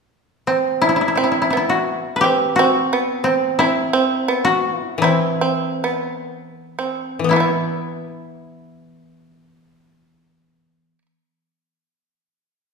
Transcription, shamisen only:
1.17 1.54 C4 medium
1.53 2.23 B3 soft
2.24 2.58 C4 soft
2.59 2.93 C4 medium
2.93 3.61 B3 medium
3.60 3.92 C4 medium
3.93 4.28 C4 medium
4.28 5.01 B3 medium
5.04 5.40 C4 medium
5.41 5.83 C4 medium
5.84 6.79 B3 medium
6.79 7.32 C4 soft
7.33 10.98 E3 soft
7.33 11.02 B3 soft
7.40 11.06 E4 soft

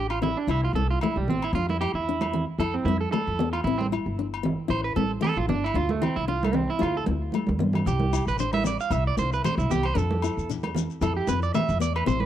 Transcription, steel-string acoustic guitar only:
0.00 0.15 D4 medium
0.22 0.41 C4 medium
0.48 0.68 E4 medium
0.76 0.95 C4 medium
1.03 1.22 A3 medium
1.30 1.48 B3 medium
1.55 1.74 D4 medium
1.81 2.00 E4 medium
2.09 2.27 D4 medium
2.33 2.52 C4 medium
2.60 2.79 E4 medium
2.88 3.06 C4 medium
3.13 3.32 A3 medium
3.40 3.59 B3 medium
3.67 3.85 C4 medium
3.92 4.11 E4 medium
4.19 4.38 D4 medium
4.43 4.63 C4 medium
4.68 4.88 E4 medium
4.96 5.15 C4 medium
5.21 5.41 A3 medium
5.49 5.68 B3 medium
5.75 5.95 D4 medium
6.02 6.21 E4 medium
6.28 6.47 D4 medium
6.53 6.73 C4 medium
6.79 6.99 E4 medium
7.07 7.26 C4 medium
7.34 7.53 A3 medium
7.60 7.79 B3 medium
7.87 muted steel-string acoustic guitar stroke medium
8.13 8.32 E4 medium
8.40 8.59 D4 medium
8.64 8.83 C4 medium
8.91 9.10 E4 medium
9.18 9.37 C4 medium
9.44 9.63 A3 medium
9.71 9.90 B3 medium
9.95 10.15 D4 medium
10.24 10.42 E4 medium
10.49 10.68 D4 medium
10.76 10.95 C4 medium
11.02 11.21 E4 medium
11.29 11.48 C4 medium
11.54 11.74 A3 medium
11.80 12.00 B3 medium
12.06 12.26 C4 medium

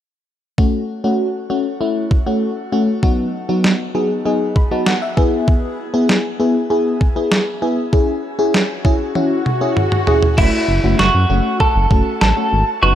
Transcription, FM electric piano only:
0.58 0.81 A3 medium
0.58 0.81 C#4 medium
0.58 0.81 F#4 medium
1.04 1.27 A3 medium
1.04 1.27 C#4 medium
1.04 1.27 F#4 medium
1.50 1.65 A3 medium
1.50 1.65 C#4 medium
1.50 1.65 F#4 medium
1.81 2.04 A3 medium
1.81 2.04 C#4 medium
1.81 2.04 E4 medium
2.26 2.50 A3 medium
2.26 2.50 C#4 medium
2.26 2.50 F#4 medium
2.72 2.88 A3 medium
2.72 2.88 C#4 medium
2.72 2.88 F#4 medium
3.03 3.26 F#3 medium
3.03 3.26 B3 medium
3.03 3.26 D#4 medium
3.03 3.26 F#4 medium
3.49 3.72 F#3 medium
3.49 3.72 B3 medium
3.49 3.72 D#4 medium
3.49 3.72 F#4 medium
3.95 4.10 F#3 medium
3.95 4.10 B3 medium
3.95 4.10 D#4 medium
3.95 4.10 G#4 medium
4.25 4.48 F#3 medium
4.25 4.48 B3 medium
4.25 4.49 D#4 medium
4.25 4.48 G#4 medium
4.56 4.70 B5 medium
4.71 4.94 F#3 medium
4.71 4.94 B3 medium
4.71 4.94 D#4 medium
4.71 4.94 F#4 medium
4.71 4.86 A5 medium
4.87 5.01 F#5 medium
5.02 5.45 E5 medium
5.17 5.78 B3 medium
5.17 5.78 E4 medium
5.17 5.78 G#4 medium
5.94 6.17 B3 medium
5.94 6.17 E4 medium
5.94 6.17 G#4 medium
6.40 6.55 B3 medium
6.40 6.55 E4 medium
6.40 6.55 G#4 medium
6.70 6.93 B3 medium
6.70 6.93 E4 medium
6.70 6.93 G#4 medium
7.16 7.39 B3 medium
7.16 7.39 E4 medium
7.16 7.39 G#4 medium
7.62 7.78 B3 medium
7.62 7.77 E4 medium
7.62 7.78 G#4 medium
7.93 8.16 C#4 medium
7.93 8.16 E4 medium
7.93 8.16 G#4 medium
8.39 8.62 C#4 medium
8.39 8.62 E4 medium
8.39 8.62 G#4 medium
8.85 9.00 C#4 medium
8.85 9.00 E4 medium
8.85 9.00 G#4 medium
9.15 9.38 C#4 medium
9.15 9.38 E4 medium
9.15 9.38 F#4 medium
9.61 9.84 C#4 medium
9.61 9.84 E4 medium
9.61 9.84 G#4 medium
10.07 10.23 C#4 medium
10.07 10.23 E4 medium
10.07 10.22 G#4 medium
10.38 10.61 A3 medium
10.38 10.61 C#4 medium
10.38 10.61 F#4 medium
10.84 11.07 A3 medium
10.84 11.07 C#4 medium
10.84 11.07 F#4 medium
11.30 11.60 A3 medium
11.30 11.60 C#4 medium
11.30 11.60 F#4 medium
11.91 12.14 A3 medium
11.91 12.14 C#4 medium
11.91 12.14 F#4 medium
12.37 12.60 A3 medium
12.37 12.60 C#4 medium
12.37 12.60 F#4 medium
12.83 12.95 B3 medium
12.83 12.95 D#4 medium
12.83 12.95 F#4 medium

